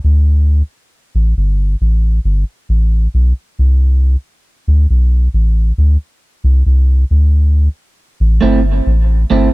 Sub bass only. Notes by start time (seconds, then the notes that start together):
0.04 D2
1.15 A1
1.37 G1
1.81 A1
2.25 G1
2.69 A1
3.14 B1
3.59 C2
4.68 D2
4.90 B1
5.34 A1
5.78 D2
6.44 C2
6.66 C2
7.11 D2
8.20 A1
8.42 G1
8.86 A1
9.31 G1